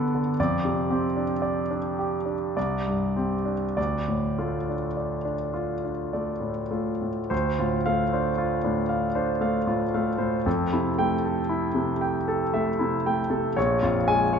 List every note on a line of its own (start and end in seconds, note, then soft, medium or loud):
0.00 0.32 G2 medium
0.00 0.15 D3 soft
0.00 0.40 B3 soft
0.00 0.41 D4 soft
0.00 0.40 A4 soft
0.00 0.40 D5 soft
0.15 0.39 D3 soft
0.40 2.53 F2 medium
0.40 1.23 D5 medium
0.65 1.06 C3 soft
0.90 1.33 C4 soft
0.90 1.76 G4 soft
1.17 1.60 D4 soft
1.42 2.32 D5 soft
1.71 2.15 D4 soft
1.99 2.56 G4 soft
2.26 2.55 D4 soft
2.57 3.74 C2 soft
2.57 3.53 D5 medium
2.87 3.35 G2 soft
3.16 3.65 C4 soft
3.16 3.78 G4 soft
3.46 3.77 D4 soft
3.77 7.28 D2 soft
3.77 4.75 D5 soft
4.08 4.57 A2 soft
4.39 4.87 A3 soft
4.39 5.34 F4 soft
4.70 5.17 D4 soft
4.97 5.90 D5 soft
5.25 5.73 D4 soft
5.54 6.48 F4 soft
5.85 6.31 D4 soft
6.13 6.61 A3 soft
6.13 7.08 D5 soft
6.40 6.90 A2 soft
6.71 7.19 A3 soft
6.71 7.30 F4 soft
7.02 7.31 A2 soft
7.30 10.41 D2 medium
7.30 7.75 C5 soft
7.58 8.03 A2 soft
7.58 8.02 F4 soft
7.86 8.29 A3 soft
7.86 8.29 F5 medium
8.13 8.56 D4 soft
8.13 8.56 C5 soft
8.38 8.81 F4 soft
8.64 9.06 A2 soft
8.64 9.06 D4 soft
8.89 9.31 F5 soft
9.15 9.56 D4 soft
9.15 9.57 C5 soft
9.41 9.82 A3 soft
9.41 9.83 F5 soft
9.67 10.09 A2 soft
9.67 10.09 F4 soft
9.94 10.36 A3 soft
9.94 10.36 F5 soft
10.18 10.45 A2 soft
10.18 10.45 C5 soft
10.46 13.52 F2 medium
10.46 10.88 A4 soft
10.72 11.15 C3 soft
10.72 11.14 E4 soft
10.98 11.40 A3 soft
10.98 11.40 G5 medium
11.25 11.66 A4 soft
11.49 11.91 E4 soft
11.75 12.17 C3 soft
12.01 12.43 G5 soft
12.28 12.69 A4 soft
12.54 12.95 A3 soft
12.54 12.95 E5 medium
12.79 13.21 C3 soft
12.79 13.20 E4 soft
13.06 13.47 A3 soft
13.06 13.47 G5 soft
13.30 13.56 C3 soft
13.30 13.56 A4 soft
13.56 14.39 A#1 medium
13.56 13.97 C#5 medium
13.83 14.23 F2 soft
13.83 14.23 F4 soft
14.08 14.39 G#3 soft
14.08 14.39 G#5 medium
14.33 14.39 C#5 soft